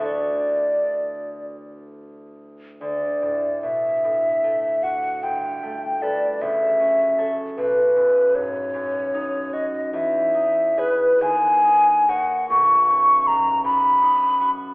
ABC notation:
X:1
M:6/8
L:1/8
Q:3/8=50
K:D
V:1 name="Flute"
d3 z3 | d2 e3 f | g2 d e3 | B2 c3 ^d |
e2 B ^g2 _g | [K:Blyd] c'2 a b2 z |]
V:2 name="Harp"
[D,,A,FAc]6- | [D,,A,FAc]6- | [D,,A,FAc]6 | z6 |
z6 | [K:Blyd] z6 |]
V:3 name="Harp"
z6 | D,, A,, B,, A,, A, F | G,,, A, [AB] F,,, C [Ac] | B,,, F,, ^G,, F,, ^D F |
E,, ^D [^GB] _E,, _E [_B_d] | [K:Blyd] B,,, F,, G,, F,, D F |]